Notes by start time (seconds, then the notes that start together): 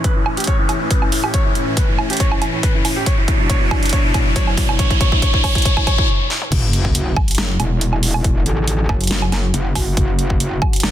Already playing: A2 E3 C#4, riser
0.04 B4, kick, closed hi-hat
0.16 E4
0.26 E4, low woodblock
0.37 G4, closed hi-hat
0.40 closed hi-hat
0.44 C#5, closed hi-hat
0.47 kick, closed hi-hat
0.59 E4
0.69 E4, closed hi-hat, low woodblock
0.81 E4
0.91 B4, kick, closed hi-hat
1.02 E4, low woodblock
1.12 E4, open hi-hat
1.24 G4, low woodblock
1.34 C#5, kick, closed hi-hat
1.45 E4
1.55 E4, closed hi-hat
1.67 E4
1.77 B4, kick, closed hi-hat
1.88 E4
1.98 E4, low woodblock
2.10 G4, closed hi-hat
2.13 closed hi-hat
2.17 kick, closed hi-hat
2.20 C#5, closed hi-hat
2.32 E4, low woodblock
2.42 E4, closed hi-hat, low woodblock
2.53 E4
2.63 B4, kick, closed hi-hat
2.75 E4
2.85 E4, open hi-hat, low woodblock
2.96 G4
3.06 B2 F#3 D4 C#5, kick, closed hi-hat
3.18 E4
3.28 E4, kick, closed hi-hat
3.39 E4
3.50 C#5, kick, closed hi-hat
3.61 E4
3.71 E4, kick, low woodblock
3.83 E4, closed hi-hat
3.86 closed hi-hat
3.89 closed hi-hat
3.93 C#5, kick, closed hi-hat
4.04 E4
4.14 E4, kick, closed hi-hat, low woodblock
4.26 E4
4.36 C#5, kick, closed hi-hat
4.47 E4, low woodblock
4.57 E4, kick, open hi-hat
4.69 E4, low woodblock
4.79 C#5, kick, closed hi-hat
4.91 E4, kick, closed hi-hat
5.01 C#5, kick, closed hi-hat
5.12 E4, kick
5.22 C#5, kick, closed hi-hat
5.34 E4, kick
5.44 C#5, kick, open hi-hat, low woodblock
5.55 E4, kick, closed hi-hat
5.58 closed hi-hat
5.62 C#5, kick, closed hi-hat
5.65 closed hi-hat
5.77 E4, kick, low woodblock
5.87 C#5, kick, closed hi-hat, low woodblock
5.98 E4, kick
6.30 snare
6.42 mid tom
6.52 F#1 C#3 F#3 F#4, kick, closed hi-hat, crash, sub drop
6.73 closed hi-hat
6.85 kick
6.95 closed hi-hat
7.16 kick, low woodblock
7.28 closed hi-hat
7.31 closed hi-hat
7.35 snare, closed hi-hat
7.38 F#1, closed hi-hat
7.60 E1, closed hi-hat, low woodblock
7.81 closed hi-hat
7.93 low woodblock
8.03 open hi-hat
8.14 low woodblock
8.24 kick, closed hi-hat
8.46 A1, closed hi-hat
8.68 closed hi-hat
8.89 F#1, kick, low woodblock
9.01 closed hi-hat
9.04 closed hi-hat
9.07 snare, closed hi-hat
9.11 closed hi-hat
9.22 low woodblock
9.32 snare, closed hi-hat, low woodblock
9.54 F#1, closed hi-hat
9.75 F#1, kick, open hi-hat, low woodblock
9.97 F#1, kick, closed hi-hat
10.19 closed hi-hat
10.30 kick
10.40 closed hi-hat
10.62 kick, low woodblock
10.73 closed hi-hat
10.76 closed hi-hat
10.80 F#1, snare, closed hi-hat
10.83 closed hi-hat